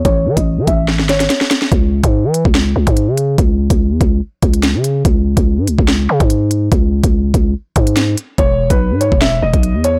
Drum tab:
HH |x--x--x---xxx-x-|x--x--x----xx-x-|x--x--x---xxx-x-|x--x--x----xx-x-|
SD |--------oooooooo|--------o-------|------------o---|--------o-------|
BD |o--o--o---------|o--o---o---o----|o--o--o---o-----|o--o---o---o----|

HH |x--x--x---xxx-x-|x--x--x----xx-x-|
SD |------------o---|--------o-------|
BD |o--o--o---o-----|o--o---o---o----|